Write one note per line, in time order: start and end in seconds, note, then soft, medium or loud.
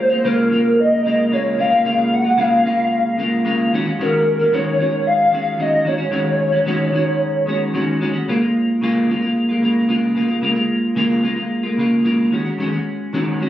0.00 0.12 G#3 soft
0.00 0.11 A#3 soft
0.00 0.29 C5 medium
0.10 0.24 G#3 soft
0.10 0.24 A#3 soft
0.10 0.24 F4 soft
0.24 0.49 C#3 medium
0.24 0.50 G#3 medium
0.24 0.51 A#3 medium
0.24 0.52 F4 medium
0.24 0.82 A#4 medium
0.50 1.04 C#3 medium
0.50 1.06 G#3 medium
0.50 1.07 A#3 medium
0.50 1.07 F4 medium
0.80 1.35 D#5 medium
1.05 1.30 C#3 medium
1.05 1.31 G#3 medium
1.05 1.32 A#3 medium
1.05 1.32 F4 medium
1.31 1.56 C#3 medium
1.31 1.58 G#3 medium
1.31 1.58 A#3 medium
1.31 1.59 F4 medium
1.31 1.61 C#5 medium
1.58 1.71 C#3 medium
1.58 1.72 G#3 medium
1.58 1.71 A#3 medium
1.58 1.70 F4 medium
1.58 2.15 F5 loud
1.71 1.84 G#3 soft
1.71 1.84 A#3 soft
1.71 1.84 F4 soft
1.84 2.25 C#3 medium
1.84 2.25 G#3 medium
1.84 2.25 A#3 medium
1.84 2.23 F4 medium
2.14 2.40 F#5 loud
2.24 2.37 G#3 soft
2.24 2.37 A#3 soft
2.24 2.38 F4 soft
2.37 2.62 C#3 medium
2.37 2.64 G#3 medium
2.37 2.65 A#3 medium
2.37 2.66 F4 medium
2.37 3.72 F5 loud
2.64 3.16 C#3 medium
2.64 3.18 G#3 medium
2.64 3.19 A#3 medium
2.64 3.20 F4 medium
3.17 3.43 C#3 medium
3.17 3.44 G#3 medium
3.17 3.44 A#3 medium
3.17 3.45 F4 medium
3.44 3.72 C#3 medium
3.44 3.72 G#3 medium
3.44 3.72 A#3 medium
3.44 3.73 F4 medium
3.72 3.86 D#3 medium
3.72 3.86 G#3 medium
3.72 3.86 C#4 medium
3.72 3.84 F#4 medium
3.85 3.98 G#3 soft
3.85 3.99 C#4 soft
3.85 3.99 F#4 medium
3.99 4.39 D#3 medium
3.99 4.39 G#3 medium
3.99 4.40 C#4 medium
3.99 4.38 F#4 medium
3.99 4.56 A#4 medium
4.39 4.52 G#3 soft
4.39 4.53 C#4 soft
4.39 4.53 F#4 soft
4.52 4.77 D#3 medium
4.52 4.79 G#3 medium
4.52 4.79 C#4 medium
4.52 4.80 F#4 medium
4.52 5.08 C#5 loud
4.78 5.30 D#3 medium
4.78 5.32 G#3 medium
4.78 5.34 C#4 medium
4.78 5.33 F#4 medium
5.07 5.63 F5 loud
5.31 5.57 D#3 medium
5.31 5.58 G#3 medium
5.31 5.58 C#4 medium
5.31 5.59 F#4 medium
5.58 5.83 D#3 medium
5.58 5.84 G#3 medium
5.58 5.85 C#4 medium
5.58 5.86 F#4 medium
5.58 5.89 D#5 loud
5.84 5.99 D#3 medium
5.84 5.99 G#3 medium
5.84 5.99 C#4 medium
5.84 5.97 F#4 medium
5.84 8.01 C#5 loud
5.98 6.11 G#3 soft
5.98 6.11 C#4 soft
5.98 6.12 F#4 medium
6.11 6.52 D#3 medium
6.11 6.53 G#3 medium
6.11 6.53 C#4 medium
6.11 6.51 F#4 medium
6.52 6.65 G#3 soft
6.52 6.66 C#4 soft
6.52 6.66 F#4 medium
6.66 6.91 D#3 medium
6.66 6.92 G#3 medium
6.66 6.93 C#4 medium
6.66 6.94 F#4 loud
6.92 7.45 D#3 medium
6.92 7.47 G#3 medium
6.92 7.48 C#4 medium
6.92 7.48 F#4 medium
7.46 7.72 D#3 medium
7.46 7.73 G#3 medium
7.46 7.73 C#4 medium
7.46 7.74 F#4 medium
7.73 7.99 D#3 medium
7.73 8.00 G#3 medium
7.73 8.01 C#4 medium
7.73 8.02 F#4 medium
8.00 8.14 D#3 medium
8.00 8.15 G#3 medium
8.00 8.14 C#4 medium
8.00 8.12 F#4 medium
8.13 8.27 G#3 soft
8.13 8.28 C#4 soft
8.13 8.27 F#4 medium
8.28 8.41 C#3 medium
8.28 8.42 G#3 medium
8.28 8.42 A#3 medium
8.28 8.40 F4 medium
8.41 8.81 G#3 soft
8.41 8.82 A#3 soft
8.41 8.82 F4 medium
8.81 9.07 C#3 medium
8.81 9.08 G#3 medium
8.81 9.09 A#3 loud
8.81 9.09 F4 loud
9.08 9.22 C#3 medium
9.08 9.22 G#3 medium
9.08 9.22 A#3 medium
9.08 9.21 F4 medium
9.22 9.50 G#3 soft
9.22 9.49 A#3 soft
9.22 9.48 F4 soft
9.49 9.62 G#3 soft
9.49 9.63 A#3 medium
9.49 9.62 F4 medium
9.62 9.87 C#3 medium
9.62 9.87 G#3 medium
9.62 9.88 A#3 medium
9.62 9.89 F4 medium
9.88 10.13 C#3 medium
9.88 10.14 G#3 medium
9.88 10.15 A#3 medium
9.88 10.16 F4 medium
10.14 10.29 C#3 medium
10.14 10.29 G#3 medium
10.14 10.29 A#3 medium
10.14 10.27 F4 medium
10.28 10.42 G#3 soft
10.28 10.42 A#3 soft
10.28 10.42 F4 medium
10.41 10.56 C#3 medium
10.41 10.56 G#3 medium
10.41 10.55 A#3 medium
10.41 10.54 F4 medium
10.55 10.95 G#3 medium
10.55 10.96 A#3 soft
10.55 10.96 F4 medium
10.95 11.21 C#3 medium
10.95 11.22 G#3 medium
10.95 11.23 A#3 medium
10.95 11.24 F4 loud
11.22 11.36 C#3 medium
11.22 11.37 G#3 medium
11.22 11.37 A#3 medium
11.22 11.35 F4 medium
11.36 11.65 G#3 soft
11.36 11.64 A#3 soft
11.36 11.62 F4 soft
11.63 11.77 G#3 soft
11.63 11.78 A#3 medium
11.63 11.77 F4 medium
11.77 12.03 C#3 medium
11.77 12.04 G#3 medium
11.77 12.04 A#3 medium
11.77 12.05 F4 medium
12.04 12.30 C#3 medium
12.04 12.31 G#3 medium
12.04 12.32 A#3 medium
12.04 12.32 F4 medium
12.31 12.44 D#3 medium
12.31 12.45 G#3 medium
12.31 12.45 C#4 medium
12.31 12.43 F#4 medium
12.44 12.58 G#3 soft
12.44 12.59 C#4 soft
12.44 12.58 F#4 soft
12.58 12.72 D#3 medium
12.58 12.72 G#3 medium
12.58 12.73 C#4 medium
12.58 12.71 F#4 medium
12.72 13.13 G#3 soft
12.72 13.13 C#4 medium
12.72 13.12 F#4 soft
13.13 13.38 D#3 medium
13.13 13.39 G#3 medium
13.13 13.40 C#4 loud
13.13 13.41 F#4 medium
13.39 13.49 D#3 medium
13.39 13.49 G#3 medium
13.39 13.49 C#4 medium
13.39 13.49 F#4 medium